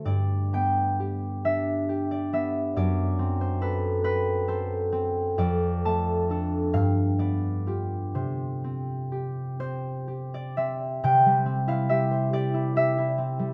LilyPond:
\new Staff \with { instrumentName = "Harp" } { \time 6/8 \key d \mixolydian \tempo 4. = 45 << { d''8 g''4 e''8. d''16 e''8 | d''8. c''16 b'8 b'8 c''4 | \key c \major d''8 a''4 f''8 d''4 | c''4. c''8. d''16 e''8 |
g''8. f''16 e''8 d''8 e''4 | } \\ { g,8 b8 g'8 d'8 g'8 b8 | fis,8 c'8 a'8 c'8 a'8 c'8 | f,8 a8 <d' a'>8 g,8 b8 <f' g'>8 | c8 c'8 g'8 c'8 g'8 c'8 |
c16 g16 c'16 e'16 g'16 c''16 g'16 e'16 g'16 e'16 c'16 g16 | } >> }